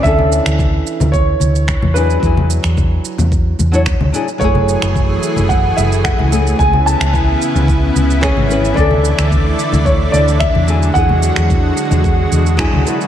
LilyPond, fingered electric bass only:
\new Staff \with { instrumentName = "Fingered electric bass" } { \clef bass \time 4/4 \key e \mixolydian \tempo 4 = 110 d,8 r16 d,8 r8 d,8 r16 d,8 r16 e,8 r16 | e,8 r16 e,8 r8 e,8 r16 e,8 r16 d,16 r8 | fis,,8 r16 fis,,8 r8 fis,,8 r16 fis,,8 r16 cis,8 r16 | cis,8 r16 cis,8 r8 cis,8 r16 cis,8 r16 gis,,8 r16 |
d,8 r16 d,8 r8 d,8 r16 d,8 r16 e,8 r16 | e,8 r16 e,8 r8 e,8 r16 e,8 r16 d,16 r8 | }